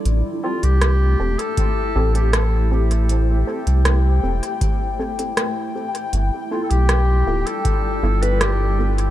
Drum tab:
HH |x--xx--xx--xx--x|x--xx--xx--xx--x|x--xx--xx--xx--x|
SD |----r-------r---|----r-------r---|----r-------r---|
BD |--------o-------|--------o-------|--------o-------|